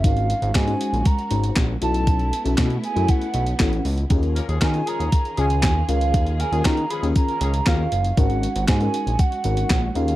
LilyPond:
<<
  \new Staff \with { instrumentName = "Soft synth lead" } { \time 4/4 \key aes \dorian \tempo 4 = 118 f''4 aes''4 bes''4 r8 a''8~ | a''4 r8 aes''8 fis''4. r8 | r4 aes''8 bes''4 aes''4 f''8~ | f''8 aes''8 bes''8 ces'''8 bes''4 f''4 |
ges''4 aes''4 ges''4. f''8 | }
  \new Staff \with { instrumentName = "FM electric piano" } { \time 4/4 \key aes \dorian <des' ees' ges' bes'>8 r8. <des' ees' ges' c''>8 r8. <des' ees' ges' c''>8 r8 <cis' e' fis' a'>8~ | <cis' e' fis' a'>8 r16 <cis' e' fis' a'>8 r8 <cis' e' fis' a'>8 r8. <cis' e' fis' a'>8 r8 | <des' f' aes' bes'>8 r8. <des' f' aes' bes'>8 r8. <des' f' aes' des''>8 r8 <des' f' aes' bes'>8 | r8. <des' f' aes' bes'>8 r8 <des' f' aes' bes'>8 r8. <des' f' aes' bes'>8 r8 |
<des' ees' ges' bes'>8 r8. <des' ees' ges' bes'>8 r8. <des' ees' ges' bes'>8 r8 <des' f' aes' bes'>8 | }
  \new Staff \with { instrumentName = "String section" } { \time 4/4 \key aes \dorian <aes des' ges'>2.~ <aes des' ges'>8 <a b e'>8~ | <a b e'>1 | <ees des' f' aes'>1~ | <ees des' f' aes'>1 |
<aes ges'>2.~ <aes ges'>8 <ees f' aes'>8 | }
  \new Staff \with { instrumentName = "Horn section" } { \time 4/4 \key aes \dorian r1 | r1 | r8 <f bes des' bes'>16 <f aes des' aes'>16 <f bes des' bes'>16 r16 <f aes des' aes'>8 r8 <f aes des' aes'>16 r4 r16 | r8 <f bes des' bes'>16 <f aes des' aes'>16 <f bes des' bes'>16 r16 <f aes des' aes'>8 r16 <f bes des' bes'>16 <f aes des' aes'>16 r16 <f bes des' bes'>8 r8 |
r1 | }
  \new Staff \with { instrumentName = "Analog synth bass" } { \clef bass \time 4/4 \key aes \dorian aes,,8. aes,,16 aes,8 r16 bes,,16 r8 aes,,8 bes,,8 b,,8~ | b,,8. b,,16 b,8 r16 fis,16 r8 b,,8 a,,8 cis,8 | ees,8. ees,16 ees8 r16 ees,16 r8 des,8 ees,8 des,8 | ees,8. ees,16 ees8 r16 ees,16 r8 des,8 ees,8 ges,,8 |
aes,,8. aes,,16 aes,8 r16 bes,,16 r8 aes,,8 bes,,8 ees,8 | }
  \new DrumStaff \with { instrumentName = "Drums" } \drummode { \time 4/4 <hh bd>16 hh16 hh16 hh16 <hc hh bd sn>16 hh16 hh16 hh16 <hh bd>16 hh16 hh16 hh16 <hc hh bd sn>8 hh16 hh16 | <hh bd>16 hh16 hh16 hh16 <hc hh bd sn>16 hh16 hh16 hh16 <hh bd>16 hh16 hh16 hh16 <hc hh bd sn>16 hh16 hho16 hh16 | <hh bd>16 hh16 hh16 hh16 <hc hh bd sn>16 hh16 hh16 hh16 <hh bd>16 hh16 hh16 hh16 <hc hh bd sn>8 hh16 hh16 | <hh bd>16 hh16 hh16 hh16 <hc hh bd sn>16 hh16 hh16 hh16 <hh bd>16 hh16 hh16 hh16 <hc hh bd sn>8 hh16 hh16 |
<hh bd>16 hh16 hh16 hh16 <hc hh bd sn>16 hh16 hh16 hh16 <hh bd>16 hh16 hh16 hh16 <hc hh bd sn>8 hh16 hh16 | }
>>